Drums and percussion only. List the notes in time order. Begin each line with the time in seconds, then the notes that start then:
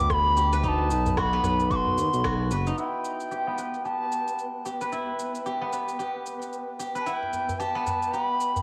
0.10 kick, cross-stick, cabasa
0.26 djembe tone
0.36 djembe slap, cabasa
0.53 cabasa
0.64 kick, cabasa
0.79 djembe slap
0.90 djembe tone, cabasa
1.06 djembe tone, djembe bass, cabasa
1.17 kick, cross-stick, cabasa
1.43 cross-stick, djembe slap, djembe bass, cabasa
1.60 djembe tone, cabasa
1.71 kick, cabasa
1.87 djembe bass
1.98 cabasa
2.14 cabasa
2.24 kick, cross-stick, cabasa
2.51 cabasa
2.67 cabasa
2.78 cabasa
3.05 cabasa
3.20 cabasa
3.32 cabasa
3.58 cabasa
3.74 cabasa
3.85 cabasa
4.12 cabasa
4.28 cabasa
4.39 cabasa
4.66 cabasa
4.81 cabasa
4.92 cabasa
5.19 cabasa
5.35 cabasa
5.46 cabasa
5.73 cabasa
5.89 cabasa
6.00 cabasa
6.26 cabasa
6.42 cabasa
6.53 cabasa
6.80 cabasa
6.96 cabasa
7.07 cabasa
7.23 djembe slap
7.33 djembe tone, cabasa
7.49 djembe tone, djembe bass, cabasa
7.60 cabasa
7.76 djembe slap
7.86 djembe slap, djembe bass, cabasa
8.03 cabasa
8.14 cabasa
8.40 cabasa
8.56 djembe bass, cabasa